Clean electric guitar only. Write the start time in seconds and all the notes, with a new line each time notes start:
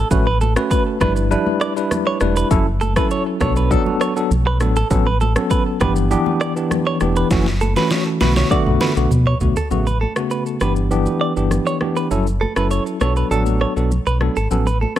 0.27 B4
0.41 A4
0.71 B4
1.01 B4
1.61 D5
2.07 C#5
2.37 B4
2.81 A4
2.97 B4
3.11 C#5
3.41 C#5
3.57 B4
3.71 A4
4.01 C#5
4.47 B4
4.77 A4
5.07 B4
5.21 A4
5.51 B4
5.81 B4
6.41 D5
6.87 C#5
7.17 B4
7.61 A4
7.77 B4
7.91 C#5
8.21 B4
8.37 C#5
8.51 D5
8.81 B4
9.27 C#5
9.57 A4
9.87 B4
10.01 A4
10.31 B4
10.61 B4
11.21 D5
11.67 C#5
11.97 B4
12.41 A4
12.57 B4
12.71 C#5
13.01 C#5
13.17 B4
13.31 A4
13.61 C#5
14.07 B4
14.37 A4
14.67 B4
14.81 A4